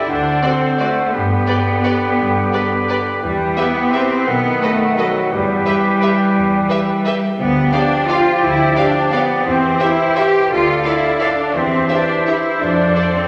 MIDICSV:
0, 0, Header, 1, 11, 480
1, 0, Start_track
1, 0, Tempo, 350467
1, 104, Time_signature, 3, 2, 24, 8
1, 5390, Tempo, 345622
1, 14990, Tempo, 353357
1, 18292, End_track
2, 0, Start_track
2, 0, Title_t, "Flute"
2, 0, Program_c, 0, 73
2, 104, Note_on_c, 0, 78, 49
2, 1551, Note_on_c, 0, 79, 55
2, 1572, Note_off_c, 0, 78, 0
2, 4413, Note_off_c, 0, 79, 0
2, 4421, Note_on_c, 0, 79, 55
2, 5853, Note_on_c, 0, 78, 56
2, 5874, Note_off_c, 0, 79, 0
2, 7303, Note_on_c, 0, 79, 63
2, 7324, Note_off_c, 0, 78, 0
2, 9824, Note_off_c, 0, 79, 0
2, 10180, Note_on_c, 0, 79, 69
2, 13001, Note_off_c, 0, 79, 0
2, 13062, Note_on_c, 0, 79, 64
2, 14510, Note_on_c, 0, 77, 65
2, 14530, Note_off_c, 0, 79, 0
2, 15936, Note_off_c, 0, 77, 0
2, 15944, Note_on_c, 0, 76, 64
2, 17382, Note_on_c, 0, 74, 58
2, 17402, Note_off_c, 0, 76, 0
2, 18292, Note_off_c, 0, 74, 0
2, 18292, End_track
3, 0, Start_track
3, 0, Title_t, "Violin section"
3, 0, Program_c, 1, 48
3, 587, Note_on_c, 1, 74, 46
3, 697, Note_off_c, 1, 74, 0
3, 1072, Note_on_c, 1, 74, 42
3, 1181, Note_off_c, 1, 74, 0
3, 2013, Note_on_c, 1, 74, 47
3, 2123, Note_off_c, 1, 74, 0
3, 2521, Note_on_c, 1, 74, 47
3, 2631, Note_off_c, 1, 74, 0
3, 3464, Note_on_c, 1, 74, 45
3, 3574, Note_off_c, 1, 74, 0
3, 3955, Note_on_c, 1, 74, 47
3, 4065, Note_off_c, 1, 74, 0
3, 4893, Note_on_c, 1, 76, 52
3, 5002, Note_off_c, 1, 76, 0
3, 5394, Note_on_c, 1, 76, 52
3, 5505, Note_off_c, 1, 76, 0
3, 6337, Note_on_c, 1, 75, 48
3, 6448, Note_off_c, 1, 75, 0
3, 6838, Note_on_c, 1, 75, 54
3, 6949, Note_off_c, 1, 75, 0
3, 7798, Note_on_c, 1, 76, 59
3, 7909, Note_off_c, 1, 76, 0
3, 8284, Note_on_c, 1, 76, 52
3, 8395, Note_off_c, 1, 76, 0
3, 9227, Note_on_c, 1, 76, 55
3, 9338, Note_off_c, 1, 76, 0
3, 9721, Note_on_c, 1, 76, 57
3, 9832, Note_off_c, 1, 76, 0
3, 10653, Note_on_c, 1, 77, 57
3, 10764, Note_off_c, 1, 77, 0
3, 11157, Note_on_c, 1, 77, 57
3, 11268, Note_off_c, 1, 77, 0
3, 12097, Note_on_c, 1, 77, 59
3, 12208, Note_off_c, 1, 77, 0
3, 12588, Note_on_c, 1, 77, 57
3, 12700, Note_off_c, 1, 77, 0
3, 13536, Note_on_c, 1, 76, 51
3, 13647, Note_off_c, 1, 76, 0
3, 14042, Note_on_c, 1, 76, 55
3, 14153, Note_off_c, 1, 76, 0
3, 14977, Note_on_c, 1, 77, 52
3, 15086, Note_off_c, 1, 77, 0
3, 15467, Note_on_c, 1, 77, 49
3, 15576, Note_off_c, 1, 77, 0
3, 16410, Note_on_c, 1, 76, 53
3, 16519, Note_off_c, 1, 76, 0
3, 16925, Note_on_c, 1, 76, 50
3, 17033, Note_off_c, 1, 76, 0
3, 17860, Note_on_c, 1, 74, 47
3, 17969, Note_off_c, 1, 74, 0
3, 18292, End_track
4, 0, Start_track
4, 0, Title_t, "Oboe"
4, 0, Program_c, 2, 68
4, 111, Note_on_c, 2, 72, 51
4, 1551, Note_on_c, 2, 71, 58
4, 1571, Note_off_c, 2, 72, 0
4, 4421, Note_off_c, 2, 71, 0
4, 4430, Note_on_c, 2, 71, 61
4, 7253, Note_off_c, 2, 71, 0
4, 7315, Note_on_c, 2, 71, 68
4, 9779, Note_off_c, 2, 71, 0
4, 10195, Note_on_c, 2, 74, 70
4, 13008, Note_off_c, 2, 74, 0
4, 13067, Note_on_c, 2, 72, 67
4, 14511, Note_on_c, 2, 74, 64
4, 14531, Note_off_c, 2, 72, 0
4, 15953, Note_on_c, 2, 72, 64
4, 15973, Note_off_c, 2, 74, 0
4, 18292, Note_off_c, 2, 72, 0
4, 18292, End_track
5, 0, Start_track
5, 0, Title_t, "Violin section"
5, 0, Program_c, 3, 48
5, 585, Note_on_c, 3, 72, 44
5, 694, Note_off_c, 3, 72, 0
5, 1087, Note_on_c, 3, 72, 42
5, 1196, Note_off_c, 3, 72, 0
5, 2030, Note_on_c, 3, 71, 46
5, 2140, Note_off_c, 3, 71, 0
5, 2523, Note_on_c, 3, 71, 44
5, 2633, Note_off_c, 3, 71, 0
5, 3473, Note_on_c, 3, 71, 47
5, 3583, Note_off_c, 3, 71, 0
5, 3966, Note_on_c, 3, 71, 46
5, 4075, Note_off_c, 3, 71, 0
5, 4900, Note_on_c, 3, 71, 51
5, 5010, Note_off_c, 3, 71, 0
5, 5396, Note_on_c, 3, 71, 49
5, 5507, Note_off_c, 3, 71, 0
5, 6347, Note_on_c, 3, 71, 55
5, 6458, Note_off_c, 3, 71, 0
5, 6837, Note_on_c, 3, 71, 52
5, 6948, Note_off_c, 3, 71, 0
5, 7778, Note_on_c, 3, 71, 53
5, 7889, Note_off_c, 3, 71, 0
5, 8273, Note_on_c, 3, 71, 58
5, 8384, Note_off_c, 3, 71, 0
5, 9221, Note_on_c, 3, 71, 59
5, 9332, Note_off_c, 3, 71, 0
5, 9720, Note_on_c, 3, 71, 58
5, 9831, Note_off_c, 3, 71, 0
5, 10656, Note_on_c, 3, 74, 51
5, 10767, Note_off_c, 3, 74, 0
5, 11147, Note_on_c, 3, 74, 56
5, 11258, Note_off_c, 3, 74, 0
5, 12098, Note_on_c, 3, 74, 60
5, 12209, Note_off_c, 3, 74, 0
5, 12595, Note_on_c, 3, 74, 57
5, 12707, Note_off_c, 3, 74, 0
5, 13547, Note_on_c, 3, 72, 56
5, 13658, Note_off_c, 3, 72, 0
5, 14037, Note_on_c, 3, 72, 56
5, 14148, Note_off_c, 3, 72, 0
5, 14994, Note_on_c, 3, 74, 52
5, 15102, Note_off_c, 3, 74, 0
5, 15475, Note_on_c, 3, 74, 52
5, 15584, Note_off_c, 3, 74, 0
5, 16415, Note_on_c, 3, 72, 51
5, 16524, Note_off_c, 3, 72, 0
5, 16924, Note_on_c, 3, 72, 46
5, 17033, Note_off_c, 3, 72, 0
5, 17860, Note_on_c, 3, 72, 46
5, 17969, Note_off_c, 3, 72, 0
5, 18292, End_track
6, 0, Start_track
6, 0, Title_t, "Clarinet"
6, 0, Program_c, 4, 71
6, 106, Note_on_c, 4, 69, 53
6, 1554, Note_on_c, 4, 67, 53
6, 1574, Note_off_c, 4, 69, 0
6, 4418, Note_off_c, 4, 67, 0
6, 4426, Note_on_c, 4, 67, 57
6, 5855, Note_on_c, 4, 69, 58
6, 5876, Note_off_c, 4, 67, 0
6, 7304, Note_on_c, 4, 67, 65
6, 7325, Note_off_c, 4, 69, 0
6, 9824, Note_off_c, 4, 67, 0
6, 10187, Note_on_c, 4, 67, 67
6, 13004, Note_off_c, 4, 67, 0
6, 13061, Note_on_c, 4, 67, 63
6, 14517, Note_on_c, 4, 69, 64
6, 14538, Note_off_c, 4, 67, 0
6, 15937, Note_off_c, 4, 69, 0
6, 15946, Note_on_c, 4, 67, 63
6, 17380, Note_on_c, 4, 69, 57
6, 17401, Note_off_c, 4, 67, 0
6, 18292, Note_off_c, 4, 69, 0
6, 18292, End_track
7, 0, Start_track
7, 0, Title_t, "Viola section"
7, 0, Program_c, 5, 48
7, 595, Note_on_c, 5, 66, 41
7, 704, Note_off_c, 5, 66, 0
7, 1083, Note_on_c, 5, 66, 44
7, 1193, Note_off_c, 5, 66, 0
7, 2033, Note_on_c, 5, 67, 46
7, 2143, Note_off_c, 5, 67, 0
7, 2528, Note_on_c, 5, 67, 46
7, 2638, Note_off_c, 5, 67, 0
7, 3475, Note_on_c, 5, 67, 46
7, 3585, Note_off_c, 5, 67, 0
7, 3971, Note_on_c, 5, 67, 44
7, 4080, Note_off_c, 5, 67, 0
7, 4898, Note_on_c, 5, 67, 48
7, 5007, Note_off_c, 5, 67, 0
7, 5395, Note_on_c, 5, 67, 46
7, 5506, Note_off_c, 5, 67, 0
7, 6347, Note_on_c, 5, 69, 50
7, 6458, Note_off_c, 5, 69, 0
7, 6842, Note_on_c, 5, 69, 49
7, 6953, Note_off_c, 5, 69, 0
7, 7794, Note_on_c, 5, 67, 52
7, 7905, Note_off_c, 5, 67, 0
7, 8291, Note_on_c, 5, 67, 50
7, 8402, Note_off_c, 5, 67, 0
7, 9233, Note_on_c, 5, 67, 53
7, 9344, Note_off_c, 5, 67, 0
7, 9736, Note_on_c, 5, 67, 52
7, 9847, Note_off_c, 5, 67, 0
7, 10657, Note_on_c, 5, 67, 53
7, 10768, Note_off_c, 5, 67, 0
7, 11159, Note_on_c, 5, 67, 54
7, 11271, Note_off_c, 5, 67, 0
7, 12098, Note_on_c, 5, 67, 58
7, 12209, Note_off_c, 5, 67, 0
7, 12589, Note_on_c, 5, 67, 52
7, 12700, Note_off_c, 5, 67, 0
7, 13551, Note_on_c, 5, 67, 58
7, 13662, Note_off_c, 5, 67, 0
7, 14055, Note_on_c, 5, 67, 53
7, 14166, Note_off_c, 5, 67, 0
7, 14993, Note_on_c, 5, 69, 56
7, 15102, Note_off_c, 5, 69, 0
7, 15478, Note_on_c, 5, 69, 51
7, 15587, Note_off_c, 5, 69, 0
7, 16426, Note_on_c, 5, 67, 49
7, 16535, Note_off_c, 5, 67, 0
7, 16923, Note_on_c, 5, 67, 48
7, 17032, Note_off_c, 5, 67, 0
7, 17860, Note_on_c, 5, 69, 47
7, 17969, Note_off_c, 5, 69, 0
7, 18292, End_track
8, 0, Start_track
8, 0, Title_t, "Cello section"
8, 0, Program_c, 6, 48
8, 113, Note_on_c, 6, 62, 76
8, 579, Note_on_c, 6, 60, 68
8, 586, Note_off_c, 6, 62, 0
8, 1077, Note_off_c, 6, 60, 0
8, 1083, Note_on_c, 6, 57, 63
8, 1542, Note_off_c, 6, 57, 0
8, 1548, Note_on_c, 6, 59, 69
8, 4197, Note_off_c, 6, 59, 0
8, 4422, Note_on_c, 6, 55, 77
8, 4862, Note_off_c, 6, 55, 0
8, 4898, Note_on_c, 6, 59, 85
8, 5389, Note_on_c, 6, 60, 83
8, 5391, Note_off_c, 6, 59, 0
8, 5860, Note_off_c, 6, 60, 0
8, 5860, Note_on_c, 6, 59, 89
8, 6338, Note_off_c, 6, 59, 0
8, 6338, Note_on_c, 6, 57, 87
8, 6837, Note_off_c, 6, 57, 0
8, 6842, Note_on_c, 6, 54, 76
8, 7309, Note_off_c, 6, 54, 0
8, 7310, Note_on_c, 6, 55, 83
8, 9912, Note_off_c, 6, 55, 0
8, 10185, Note_on_c, 6, 59, 88
8, 10625, Note_off_c, 6, 59, 0
8, 10656, Note_on_c, 6, 62, 96
8, 11152, Note_on_c, 6, 65, 92
8, 11153, Note_off_c, 6, 62, 0
8, 11621, Note_off_c, 6, 65, 0
8, 11621, Note_on_c, 6, 64, 94
8, 12085, Note_off_c, 6, 64, 0
8, 12094, Note_on_c, 6, 62, 94
8, 12593, Note_off_c, 6, 62, 0
8, 12594, Note_on_c, 6, 59, 84
8, 13062, Note_off_c, 6, 59, 0
8, 13069, Note_on_c, 6, 60, 84
8, 13547, Note_off_c, 6, 60, 0
8, 13547, Note_on_c, 6, 64, 91
8, 14048, Note_off_c, 6, 64, 0
8, 14051, Note_on_c, 6, 67, 92
8, 14520, Note_off_c, 6, 67, 0
8, 14523, Note_on_c, 6, 65, 93
8, 14986, Note_off_c, 6, 65, 0
8, 14995, Note_on_c, 6, 64, 86
8, 15472, Note_off_c, 6, 64, 0
8, 15483, Note_on_c, 6, 62, 80
8, 15943, Note_on_c, 6, 60, 85
8, 15947, Note_off_c, 6, 62, 0
8, 16419, Note_off_c, 6, 60, 0
8, 16420, Note_on_c, 6, 62, 87
8, 16905, Note_off_c, 6, 62, 0
8, 16914, Note_on_c, 6, 64, 75
8, 17373, Note_off_c, 6, 64, 0
8, 17380, Note_on_c, 6, 62, 83
8, 18105, Note_off_c, 6, 62, 0
8, 18107, Note_on_c, 6, 60, 74
8, 18292, Note_off_c, 6, 60, 0
8, 18292, End_track
9, 0, Start_track
9, 0, Title_t, "French horn section"
9, 0, Program_c, 7, 60
9, 101, Note_on_c, 7, 62, 59
9, 571, Note_off_c, 7, 62, 0
9, 592, Note_on_c, 7, 60, 61
9, 1075, Note_off_c, 7, 60, 0
9, 1089, Note_on_c, 7, 57, 54
9, 1545, Note_off_c, 7, 57, 0
9, 1547, Note_on_c, 7, 59, 69
9, 4144, Note_off_c, 7, 59, 0
9, 4438, Note_on_c, 7, 55, 62
9, 4870, Note_off_c, 7, 55, 0
9, 4889, Note_on_c, 7, 59, 73
9, 5377, Note_off_c, 7, 59, 0
9, 5386, Note_on_c, 7, 60, 77
9, 5848, Note_on_c, 7, 59, 77
9, 5859, Note_off_c, 7, 60, 0
9, 6322, Note_off_c, 7, 59, 0
9, 6331, Note_on_c, 7, 57, 80
9, 6833, Note_on_c, 7, 54, 74
9, 6834, Note_off_c, 7, 57, 0
9, 7305, Note_off_c, 7, 54, 0
9, 7310, Note_on_c, 7, 55, 79
9, 9965, Note_off_c, 7, 55, 0
9, 10183, Note_on_c, 7, 59, 79
9, 10624, Note_off_c, 7, 59, 0
9, 10658, Note_on_c, 7, 62, 75
9, 11149, Note_on_c, 7, 65, 81
9, 11155, Note_off_c, 7, 62, 0
9, 11613, Note_on_c, 7, 64, 87
9, 11619, Note_off_c, 7, 65, 0
9, 12090, Note_off_c, 7, 64, 0
9, 12100, Note_on_c, 7, 62, 74
9, 12585, Note_on_c, 7, 59, 72
9, 12596, Note_off_c, 7, 62, 0
9, 13058, Note_off_c, 7, 59, 0
9, 13063, Note_on_c, 7, 60, 77
9, 13535, Note_off_c, 7, 60, 0
9, 13542, Note_on_c, 7, 64, 77
9, 14046, Note_off_c, 7, 64, 0
9, 14057, Note_on_c, 7, 67, 83
9, 14514, Note_off_c, 7, 67, 0
9, 14531, Note_on_c, 7, 65, 82
9, 14998, Note_on_c, 7, 64, 73
9, 14999, Note_off_c, 7, 65, 0
9, 15467, Note_on_c, 7, 62, 72
9, 15473, Note_off_c, 7, 64, 0
9, 15930, Note_off_c, 7, 62, 0
9, 15931, Note_on_c, 7, 60, 78
9, 16413, Note_off_c, 7, 60, 0
9, 16413, Note_on_c, 7, 62, 76
9, 16903, Note_on_c, 7, 64, 69
9, 16911, Note_off_c, 7, 62, 0
9, 17358, Note_on_c, 7, 62, 74
9, 17367, Note_off_c, 7, 64, 0
9, 17885, Note_off_c, 7, 62, 0
9, 18106, Note_on_c, 7, 60, 63
9, 18292, Note_off_c, 7, 60, 0
9, 18292, End_track
10, 0, Start_track
10, 0, Title_t, "Bassoon"
10, 0, Program_c, 8, 70
10, 0, Note_on_c, 8, 50, 52
10, 1494, Note_off_c, 8, 50, 0
10, 1550, Note_on_c, 8, 50, 51
10, 4371, Note_off_c, 8, 50, 0
10, 4417, Note_on_c, 8, 52, 57
10, 5858, Note_on_c, 8, 51, 57
10, 5879, Note_off_c, 8, 52, 0
10, 7294, Note_off_c, 8, 51, 0
10, 7303, Note_on_c, 8, 52, 62
10, 9773, Note_off_c, 8, 52, 0
10, 10185, Note_on_c, 8, 53, 71
10, 13003, Note_off_c, 8, 53, 0
10, 13061, Note_on_c, 8, 52, 67
10, 14516, Note_on_c, 8, 50, 62
10, 14537, Note_off_c, 8, 52, 0
10, 15937, Note_off_c, 8, 50, 0
10, 15945, Note_on_c, 8, 52, 62
10, 17375, Note_on_c, 8, 53, 55
10, 17395, Note_off_c, 8, 52, 0
10, 18292, Note_off_c, 8, 53, 0
10, 18292, End_track
11, 0, Start_track
11, 0, Title_t, "Double bass section"
11, 0, Program_c, 10, 48
11, 104, Note_on_c, 10, 38, 59
11, 499, Note_off_c, 10, 38, 0
11, 1553, Note_on_c, 10, 43, 62
11, 1947, Note_off_c, 10, 43, 0
11, 2993, Note_on_c, 10, 43, 63
11, 3387, Note_off_c, 10, 43, 0
11, 4421, Note_on_c, 10, 40, 67
11, 4812, Note_off_c, 10, 40, 0
11, 5856, Note_on_c, 10, 35, 70
11, 6252, Note_off_c, 10, 35, 0
11, 7314, Note_on_c, 10, 40, 78
11, 7705, Note_off_c, 10, 40, 0
11, 8753, Note_on_c, 10, 40, 75
11, 9145, Note_off_c, 10, 40, 0
11, 10186, Note_on_c, 10, 38, 70
11, 10576, Note_off_c, 10, 38, 0
11, 11621, Note_on_c, 10, 38, 74
11, 12012, Note_off_c, 10, 38, 0
11, 13057, Note_on_c, 10, 40, 75
11, 13457, Note_off_c, 10, 40, 0
11, 14513, Note_on_c, 10, 38, 72
11, 14907, Note_off_c, 10, 38, 0
11, 15942, Note_on_c, 10, 40, 68
11, 16336, Note_off_c, 10, 40, 0
11, 17379, Note_on_c, 10, 41, 65
11, 17771, Note_off_c, 10, 41, 0
11, 18292, End_track
0, 0, End_of_file